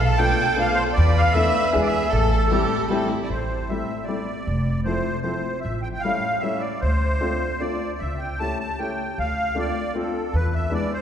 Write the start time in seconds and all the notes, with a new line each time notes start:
Already playing: B1 A4
0.06 A5
0.18 A3 B3 D4 F4 A4 G5
0.56 A3 B3 D4 F4 A4 F5
0.74 C5
0.93 B4 D5
0.97 E2
1.17 F5
1.32 A3 B3 D4 E4 A4 E5
1.72 E2 G#3 B3 D4 E4 G#4 E5
1.81 D5
1.86 E5
2.10 A1 A4
2.49 G3 A3 C4 E4 G4
2.53 G4
2.88 G3 A3 C4 E4 G4 A4
3.09 E4
3.23 D5
3.30 A1 C5
3.69 G3 A3 C4 E4 E5
4.04 D5
4.08 G3 A3 C4 E4
4.47 F1
4.85 F3 A3 C4 E4 C5
5.21 F3 A3 C4 E4 C5
5.61 A1 E5
5.82 G5
5.94 G5
6.00 F5
6.04 G3 A3 C#4 E4
6.40 G3 A3 C#4 E5
6.44 E4
6.59 D5
6.81 D2 C5
7.21 A3 C4 D4 F4
7.60 A3 C4 D4 F4 D5
7.99 C#2 E5
8.18 G5
8.39 A3 C#4 E4 G4 A5
8.60 A5
8.79 A3 C#4 E4 G4 G5
9.18 D2 F5
9.55 A3 C4 D4 F4 D5
9.94 A3 C4 D4 F4
9.98 A4
10.33 E2 B4
10.54 E5
10.70 G#3 B3 D4 E4 D5
10.93 C5